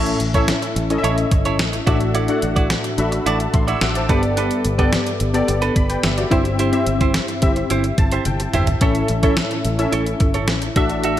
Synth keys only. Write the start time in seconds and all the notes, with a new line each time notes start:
Already playing: A2 C#4 E4 A4 E5
0.35 C#4 E4 A4 E5
0.90 C#4 E4 A4 D#5
0.98 E5
1.87 A2 D4 F#4 A4 E5
2.29 D4 F#4 A4 F#5
2.98 D4 F#4 A4 E5 B5
3.26 A5
3.54 E5 C6
3.68 E6
3.82 E5 F#5 D6
3.96 C5 A5
4.09 G2 B3 G4 A4 D5
4.78 B3 G4 A4 D5
5.34 B3 G4 A4 D5
5.76 D5 B5
5.90 B4 G5
6.04 G4 E5
6.18 F#4 D5
6.31 G2 C4 E4 G4 E5
6.72 C4 E4 G4 E5
7.42 C4 E4 G4 E5
7.98 A5
8.26 G5
8.54 E5
8.81 A2 C#4 E4 A4 E5
9.23 C#4 E4 A4 E5
9.79 C#4 E4 A4 E5
10.76 A2 D4 F#4 A4 E5